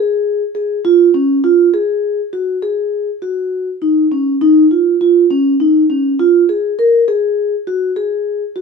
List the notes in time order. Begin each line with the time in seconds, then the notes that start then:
Already playing: G#4
0.55 G#4
0.85 F4
1.14 C#4
1.44 F4
1.74 G#4
2.33 F#4
2.62 G#4
3.22 F#4
3.82 D#4
4.12 C#4
4.41 D#4
4.71 F4
5.01 F4
5.31 C#4
5.60 D#4
5.90 C#4
6.19 F4
6.49 G#4
6.79 A#4
7.08 G#4
7.67 F#4
7.96 G#4
8.56 F#4